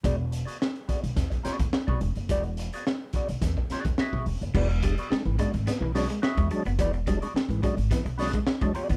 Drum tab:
CC |----------------|----------------|x---------------|----------------|
HH |x-xx-xxxxxxx--xx|xxxx--xxx-xx--ox|-xxx-xxxx-ox-xxx|xxxx-xxxxxox-xxx|
SD |----o---o-o-o---|----o---o-o-o---|----o---o-o-o---|----o---o-o-o---|
BD |o-----o-oo-o-o--|o-----o-oo-o-o--|o-o---o------o--|o-o---o-o--o-o-o|